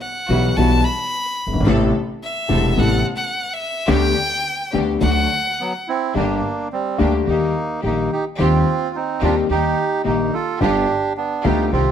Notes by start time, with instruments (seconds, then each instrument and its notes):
0.01 violin F#5
0.29 upright bass B1, grand piano B1 B2 E3 G3 B3 F#4, string section G3 E4 F#4
0.56 upright bass B1, grand piano B1 B2 E3 G3 B3 F#4, string section G3 E4 F#4, violin A5
0.84 violin B5
1.47 upright bass F#1, grand piano F#1
1.53 grand piano G1, upright bass G1
1.60 grand piano G#1, upright bass G#1
1.66 grand piano A1 A2 C3 A3 B3 E4, upright bass A1, string section B3 C4 A4
2.23 violin E5
2.49 grand piano E1 E2 C3 A3 B3 E4, upright bass E1, string section B3 C4 A4
2.77 grand piano A1 A2 C3 A3 B3 E4, upright bass A1, string section B3 C4 A4, violin F#5
3.17 violin F#5
3.54 violin E5
3.88 grand piano D2 D3 G3 B3 G4, upright bass D2, string section B3 D4 G4, violin G5
4.73 grand piano D2 D3 G3 B3 G4, upright bass D2, string section B3 D4 G4
5.01 grand piano D2 D3 F#3 A3 F#4, upright bass D2, string section A3 D4 F#4, violin F#5
5.60 bandoneon F#3 B3
5.88 bandoneon C4 E4
6.14 grand piano G1 G2 D3 G3 A#3 G4, upright bass G1, string section A#3 D4 G4, bandoneon A#3 D4
6.72 bandoneon G3 C4
6.98 grand piano D2 D3 G3 A#3 G4, upright bass D2, string section A#3 D4 G4, bandoneon A#3 D4
7.27 grand piano D#2 D#3 G3 A#3 G4, upright bass D#2, string section A#3 D#4 G4, bandoneon A#3 D#4
7.83 grand piano A#1 A#2 D#3 G3 A#3 G4, upright bass A#1, string section A#3 D#4 G4, bandoneon A#3 D#4
8.12 bandoneon D#4 G4
8.38 upright bass D#2, grand piano D#2 D#3 G3 C4 G4, string section C4 D#4 G4, bandoneon C4 F4
8.95 bandoneon C4 D#4
9.21 upright bass D#2, grand piano D#2 D#3 G3 C4 G4, string section C4 D#4 G4, bandoneon D4 F4
9.49 upright bass D#2, grand piano D#2 D#3 G3 A#3 G4, string section A#3 D#4 G4, bandoneon D#4 G4
10.04 grand piano A#1 A#2 D#3 G3 A#3 G4, upright bass A#1, string section A#3 D#4 G4, bandoneon A#3 D#4
10.34 bandoneon F4 A4
10.60 grand piano G1 G2 D3 G3 B3 F4, upright bass G1, string section B3 F4 G4, bandoneon D4 G4
11.17 bandoneon B3 D4
11.44 upright bass D2, grand piano D2 D3 G3 B3 F4, string section B3 F4 G4, bandoneon D#4 G4
11.72 upright bass C2, grand piano C2 C3 D#3 G3 C4 G4, string section C4 D#4 G4, bandoneon C4 F4